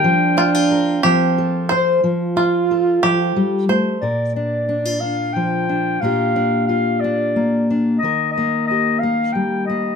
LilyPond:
<<
  \new Staff \with { instrumentName = "Clarinet" } { \time 6/8 \key bes \major \tempo 4. = 60 g''2 r4 | r2. | d''8 d''4 f''8 g''4 | f''4 f''8 d''4 r8 |
ees''8 ees''8 ees''8 f''8 g''8 ees''8 | }
  \new Staff \with { instrumentName = "Five-string banjo" } { \time 6/8 \key bes \major r8 f'4 g'4 c''8 | r8 f'4 g'4 c''8 | r2. | r2. |
r2. | }
  \new Staff \with { instrumentName = "French horn" } { \time 6/8 \key bes \major d'4. c'4 r8 | f'2. | r2. | r2. |
r2. | }
  \new Staff \with { instrumentName = "Steel-string acoustic guitar" } { \time 6/8 \key bes \major << { bes8 d'16 f'16 bes'8 r8 a'8 c''8 | r4 a'2 | bes'8 d'8 d'16 f'16 d'4 d'8 | <bes d' f' g'>8 d'8 f'8 d'4 d'8 |
bes'8 bes8 g'8 bes4 bes8 | } \\ { f4. f4. | f8 f'4 f8 g8 a8 | bes,2 f4 | bes,2 bes4 |
ees2 g4 | } >> }
>>